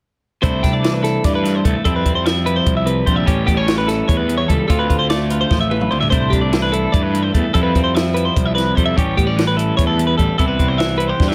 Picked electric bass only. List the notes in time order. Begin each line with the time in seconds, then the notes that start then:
0.43 C2
0.64 C2
1.24 G2
1.65 C2
1.86 F2
2.06 F2
2.67 C2
3.07 A#1
3.28 A1
3.48 A1
4.09 E2
4.50 C#2
4.70 D2
4.90 D2
5.51 A1
5.92 D2
6.13 C2
6.32 C2
6.94 G2
7.35 E2
7.55 F2
7.76 F2
8.37 C2
8.78 F2
8.97 A1
9.18 A1
9.79 E2
10.19 A1
10.40 C2
10.60 C2
11.20 G2